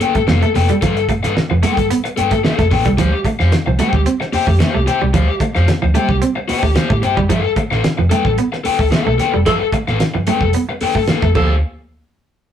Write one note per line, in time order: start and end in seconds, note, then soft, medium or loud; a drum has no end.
0.01 0.21 A4 medium
0.01 0.15 B4 medium
0.01 0.14 G5 medium
0.01 closed hi-hat medium
0.01 high conga medium
0.15 0.27 G1 medium
0.15 0.23 A3 medium
0.15 muted overdriven electric guitar stroke medium
0.15 kick medium
0.15 closed hi-hat medium
0.27 0.41 F1 loud
0.27 0.48 A4 medium
0.27 0.42 B4 loud
0.27 0.41 F5 loud
0.27 snare loud
0.27 muted conga soft
0.27 high conga loud
0.42 0.50 A3 medium
0.42 muted overdriven electric guitar stroke medium
0.42 closed hi-hat soft
0.55 0.68 F1 loud
0.55 0.71 A4 medium
0.55 0.69 B4 medium
0.55 0.68 G5 medium
0.55 muted clean electric guitar stroke soft
0.55 snare soft
0.55 open hi-hat medium
0.55 high conga medium
0.69 0.77 G3 loud
0.69 muted overdriven electric guitar stroke soft
0.69 closed hi-hat medium
0.81 1.18 G1 loud
0.81 0.91 F3 medium
0.81 1.02 A4 medium
0.81 0.97 B4 medium
0.81 0.95 F5 loud
0.81 kick loud
0.81 closed hi-hat loud
0.81 low conga medium
0.97 muted overdriven electric guitar stroke medium
0.97 closed hi-hat soft
1.09 1.17 A3 medium
1.09 muted overdriven electric guitar stroke soft
1.09 kick medium
1.09 closed hi-hat medium
1.09 muted conga soft
1.23 1.35 G1 medium
1.23 1.35 A4 medium
1.23 1.36 B4 medium
1.23 1.36 F5 medium
1.23 muted clean electric guitar stroke medium
1.23 snare soft
1.23 closed hi-hat medium
1.36 muted overdriven electric guitar stroke soft
1.36 muted clean electric guitar stroke soft
1.36 snare medium
1.36 muted conga soft
1.50 1.62 F1 medium
1.50 1.58 F3 medium
1.50 muted overdriven electric guitar stroke soft
1.63 1.71 A3 medium
1.63 1.83 A4 medium
1.63 1.77 B4 medium
1.63 1.77 G5 loud
1.63 closed hi-hat medium
1.63 muted conga soft
1.63 high conga loud
1.63 low conga medium
1.77 1.89 G1 medium
1.77 muted overdriven electric guitar stroke medium
1.77 kick medium
1.77 closed hi-hat medium
1.77 low conga medium
1.90 1.98 B3 medium
1.90 closed hi-hat loud
1.90 muted conga soft
2.04 muted overdriven electric guitar stroke medium
2.04 muted clean electric guitar stroke soft
2.04 closed hi-hat soft
2.17 2.41 G1 medium
2.17 2.37 A4 medium
2.17 2.31 B4 loud
2.17 2.31 G5 medium
2.17 closed hi-hat medium
2.17 muted conga soft
2.17 high conga medium
2.31 2.39 A3 medium
2.31 muted overdriven electric guitar stroke soft
2.31 kick medium
2.31 snare soft
2.31 closed hi-hat medium
2.44 2.64 A4 medium
2.44 2.58 B4 medium
2.44 2.57 F5 medium
2.44 snare loud
2.44 muted conga soft
2.44 high conga medium
2.58 2.70 F1 medium
2.58 2.66 A3 medium
2.58 muted overdriven electric guitar stroke medium
2.58 kick loud
2.58 snare soft
2.58 closed hi-hat soft
2.71 2.84 A1 medium
2.71 2.87 A4 medium
2.71 2.86 B4 medium
2.71 2.85 G5 medium
2.71 muted clean electric guitar stroke soft
2.71 kick loud
2.71 open hi-hat medium
2.71 muted conga soft
2.71 high conga medium
2.85 2.97 C2 medium
2.85 2.93 G3 medium
2.85 muted overdriven electric guitar stroke medium
2.85 kick loud
2.85 closed hi-hat medium
2.98 3.11 D2 loud
2.98 3.07 F3 medium
2.98 3.18 G4 medium
2.98 3.12 C5 medium
2.98 3.11 F5 medium
2.98 kick loud
2.98 closed hi-hat loud
2.98 muted conga soft
2.98 low conga medium
3.12 muted overdriven electric guitar stroke soft
3.25 3.33 A3 medium
3.25 muted overdriven electric guitar stroke soft
3.25 kick medium
3.25 closed hi-hat medium
3.39 3.51 F2 medium
3.39 3.51 G4 medium
3.39 3.52 C5 medium
3.39 3.52 F5 medium
3.39 muted clean electric guitar stroke soft
3.39 snare soft
3.52 muted overdriven electric guitar stroke soft
3.52 muted clean electric guitar stroke soft
3.52 snare loud
3.52 closed hi-hat medium
3.52 muted conga soft
3.66 3.78 C2 medium
3.66 3.74 F3 medium
3.66 muted overdriven electric guitar stroke soft
3.79 3.87 A3 medium
3.79 3.99 G4 loud
3.79 3.94 C5 medium
3.79 3.93 G5 loud
3.79 snare soft
3.79 closed hi-hat medium
3.79 high conga medium
3.79 low conga medium
3.93 4.04 D2 medium
3.93 muted overdriven electric guitar stroke soft
3.93 kick loud
3.93 low conga medium
4.06 4.14 C4 medium
4.06 closed hi-hat medium
4.06 muted conga soft
4.20 muted overdriven electric guitar stroke medium
4.20 muted clean electric guitar stroke soft
4.20 snare soft
4.32 4.53 G4 medium
4.32 4.47 C5 medium
4.32 4.46 G5 loud
4.32 muted fingered electric bass stroke soft
4.32 open hi-hat medium
4.32 high conga medium
4.47 4.58 F2 medium
4.47 4.55 A3 medium
4.47 muted overdriven electric guitar stroke soft
4.47 kick medium
4.59 4.80 G4 medium
4.59 4.74 C5 medium
4.59 4.73 F5 loud
4.59 muted fingered electric bass stroke soft
4.59 snare loud
4.59 closed hi-hat medium
4.59 high conga loud
4.74 4.86 C2 medium
4.74 4.82 A3 medium
4.74 muted overdriven electric guitar stroke soft
4.86 5.03 G4 medium
4.86 5.01 C5 medium
4.86 5.00 G5 medium
4.86 muted clean electric guitar stroke soft
4.86 snare soft
4.86 closed hi-hat medium
4.86 high conga medium
5.01 5.13 C2 loud
5.01 5.09 G3 medium
5.01 muted overdriven electric guitar stroke medium
5.14 5.26 D2 loud
5.14 5.22 F3 medium
5.14 5.34 G4 medium
5.14 5.28 C5 loud
5.14 5.27 F5 loud
5.14 kick loud
5.14 closed hi-hat loud
5.14 muted conga soft
5.14 low conga medium
5.28 muted overdriven electric guitar stroke soft
5.40 5.49 A3 medium
5.40 muted overdriven electric guitar stroke soft
5.40 kick medium
5.40 closed hi-hat medium
5.55 5.67 F2 medium
5.55 5.67 G4 soft
5.55 5.68 C5 medium
5.55 5.68 F5 medium
5.55 muted clean electric guitar stroke soft
5.55 snare soft
5.68 muted clean electric guitar stroke soft
5.68 muted overdriven electric guitar stroke soft
5.68 snare loud
5.68 closed hi-hat medium
5.68 muted conga soft
5.82 5.94 D2 medium
5.82 5.89 F3 medium
5.82 muted overdriven electric guitar stroke medium
5.94 6.03 A3 medium
5.94 6.15 G4 medium
5.94 6.09 C5 loud
5.94 6.08 G5 medium
5.94 closed hi-hat medium
5.94 muted conga soft
5.94 high conga medium
5.94 low conga medium
6.09 6.20 C2 medium
6.09 muted overdriven electric guitar stroke soft
6.09 kick medium
6.09 low conga medium
6.22 6.30 C4 medium
6.22 closed hi-hat medium
6.22 muted conga soft
6.36 muted overdriven electric guitar stroke soft
6.36 muted clean electric guitar stroke soft
6.48 6.69 G4 medium
6.48 6.62 C5 loud
6.48 6.62 G5 loud
6.48 muted fingered electric bass stroke soft
6.48 open hi-hat medium
6.48 high conga medium
6.63 6.74 D2 medium
6.63 6.70 A3 medium
6.63 muted overdriven electric guitar stroke soft
6.63 kick medium
6.63 snare soft
6.75 6.96 G4 medium
6.75 6.90 C5 loud
6.75 6.88 F5 medium
6.75 snare loud
6.75 closed hi-hat medium
6.75 high conga loud
6.90 7.01 A2 loud
6.90 6.97 A3 medium
6.90 muted overdriven electric guitar stroke soft
6.90 kick loud
7.02 7.18 G1 medium
7.02 7.19 G4 medium
7.02 7.17 C5 medium
7.02 7.16 G5 medium
7.02 muted clean electric guitar stroke soft
7.02 closed hi-hat medium
7.02 high conga medium
7.17 7.29 F1 loud
7.17 7.24 G3 medium
7.17 muted overdriven electric guitar stroke medium
7.17 kick loud
7.29 7.43 G1 loud
7.29 7.38 F3 medium
7.29 7.50 A4 medium
7.29 7.44 B4 medium
7.29 7.43 F5 medium
7.29 kick loud
7.29 closed hi-hat loud
7.29 muted conga soft
7.29 low conga medium
7.44 muted overdriven electric guitar stroke soft
7.56 7.65 A3 medium
7.56 muted overdriven electric guitar stroke soft
7.56 kick medium
7.56 closed hi-hat medium
7.56 muted conga soft
7.71 7.82 A1 medium
7.71 7.82 A4 medium
7.71 7.83 B4 medium
7.71 7.84 F5 medium
7.71 muted clean electric guitar stroke soft
7.71 snare soft
7.84 muted overdriven electric guitar stroke medium
7.84 muted clean electric guitar stroke soft
7.84 snare loud
7.84 closed hi-hat medium
7.84 muted conga soft
7.98 8.10 F1 medium
7.98 8.06 F3 medium
7.98 muted overdriven electric guitar stroke soft
8.10 8.19 A3 medium
8.10 8.31 A4 medium
8.10 8.25 B4 medium
8.10 8.25 G5 medium
8.10 snare soft
8.10 closed hi-hat medium
8.10 high conga medium
8.10 low conga medium
8.25 8.36 A1 medium
8.25 muted overdriven electric guitar stroke soft
8.25 kick medium
8.25 low conga medium
8.37 8.46 B3 medium
8.37 closed hi-hat medium
8.37 muted conga soft
8.52 muted overdriven electric guitar stroke soft
8.52 muted clean electric guitar stroke soft
8.52 snare soft
8.64 8.85 A4 medium
8.64 8.79 B4 medium
8.64 8.78 G5 loud
8.64 muted fingered electric bass stroke soft
8.64 open hi-hat medium
8.64 high conga medium
8.79 8.90 D2 medium
8.79 8.87 A3 medium
8.79 muted overdriven electric guitar stroke soft
8.79 kick loud
8.91 9.12 A4 medium
8.91 9.06 B4 medium
8.91 9.04 F5 loud
8.91 muted fingered electric bass stroke medium
8.91 snare loud
8.91 closed hi-hat medium
8.91 muted conga soft
8.91 high conga medium
9.05 9.18 B1 medium
9.05 9.14 A3 medium
9.05 muted overdriven electric guitar stroke medium
9.18 9.35 A4 medium
9.18 9.33 B4 medium
9.18 9.32 G5 medium
9.18 muted clean electric guitar stroke soft
9.18 snare soft
9.18 closed hi-hat medium
9.18 high conga medium
9.33 9.46 F1 medium
9.33 9.41 G3 medium
9.33 muted overdriven electric guitar stroke soft
9.46 9.59 G1 loud
9.46 9.54 F3 medium
9.46 9.66 A4 medium
9.46 9.55 A4 loud
9.46 9.60 B4 medium
9.46 9.59 F5 medium
9.46 kick loud
9.46 closed hi-hat loud
9.46 muted conga soft
9.46 low conga medium
9.60 muted overdriven electric guitar stroke soft
9.72 9.81 A3 medium
9.72 muted overdriven electric guitar stroke soft
9.72 kick medium
9.72 closed hi-hat medium
9.87 9.99 A1 medium
9.87 9.99 A4 medium
9.87 10.00 B4 medium
9.87 10.00 F5 medium
9.87 muted clean electric guitar stroke soft
9.87 snare soft
9.87 high conga medium
10.00 muted overdriven electric guitar stroke medium
10.00 muted clean electric guitar stroke soft
10.00 snare loud
10.00 closed hi-hat medium
10.14 10.26 G1 medium
10.14 10.22 F3 medium
10.14 muted overdriven electric guitar stroke soft
10.27 10.36 A3 medium
10.27 10.47 A4 medium
10.27 10.42 B4 loud
10.27 10.42 G5 loud
10.27 closed hi-hat medium
10.27 muted conga soft
10.27 high conga medium
10.27 low conga medium
10.41 10.52 F1 medium
10.41 muted overdriven electric guitar stroke soft
10.41 kick medium
10.41 low conga medium
10.53 10.62 B3 medium
10.53 closed hi-hat loud
10.69 muted clean electric guitar stroke soft
10.69 muted overdriven electric guitar stroke soft
10.81 11.02 A4 medium
10.81 10.96 B4 medium
10.81 10.96 G5 medium
10.81 muted fingered electric bass stroke soft
10.81 open hi-hat medium
10.81 high conga medium
10.95 11.07 G1 medium
10.95 11.02 A3 medium
10.95 muted overdriven electric guitar stroke soft
10.95 kick medium
10.95 snare soft
11.08 11.28 A4 medium
11.08 11.22 B4 medium
11.08 11.21 F5 loud
11.08 snare loud
11.08 closed hi-hat medium
11.08 high conga loud
11.22 11.34 F2 medium
11.22 11.30 A3 medium
11.22 muted overdriven electric guitar stroke soft
11.22 kick loud
11.22 snare soft
11.35 11.61 D2 medium
11.35 11.52 F3 medium
11.35 11.52 G4 medium
11.35 11.54 A4 loud
11.35 11.53 C5 medium
11.35 11.53 F5 medium
11.35 kick loud
11.35 crash medium
11.35 high conga medium